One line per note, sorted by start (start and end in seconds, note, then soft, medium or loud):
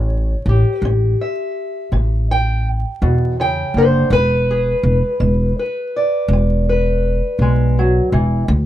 0.00 0.34 A1 loud
0.00 0.41 A2 medium
0.00 0.85 C#5 loud
0.46 0.62 A1 medium
0.46 4.09 G4 medium
0.82 1.13 A1 medium
0.82 1.51 C#4 medium
1.21 2.31 E5 soft
1.92 2.83 A1 medium
1.92 2.59 A2 medium
2.31 2.68 G5 medium
3.02 3.62 E2 medium
3.02 3.39 B2 medium
3.40 3.76 C#3 medium
3.40 3.77 G5 medium
3.74 4.05 F#1 medium
3.74 4.13 D3 medium
3.78 4.12 C5 medium
4.10 4.71 E1 loud
4.10 4.78 E3 medium
4.10 5.58 B4 loud
4.51 8.45 G#4 soft
4.83 4.99 E1 loud
5.20 5.51 E1 medium
5.20 5.87 G#3 medium
5.59 6.68 B4 soft
5.96 8.45 D5 soft
6.28 7.19 E1 loud
6.33 6.98 E3 medium
6.69 8.46 B4 soft
7.39 7.99 B1 medium
7.39 7.77 G#3 medium
7.79 8.13 F#3 medium
8.12 8.42 E1 medium
8.12 8.48 E3 medium
8.48 8.66 D2 loud
8.48 8.66 D3 medium